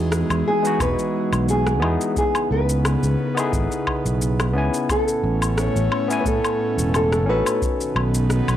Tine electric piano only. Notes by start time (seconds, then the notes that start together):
Already playing: B3 D#4 F#4 G#4
0.62 G#3 B3 D#4
0.67 F#4
1.80 B3 D#4 E4
1.85 G#4
3.35 B3 D#4 E4
3.40 G#4
4.53 B3 C#4 E4
4.58 G#5
6.08 B3 C#4 E4
6.12 G#5
7.26 C#4 D#4 F#4
7.30 A4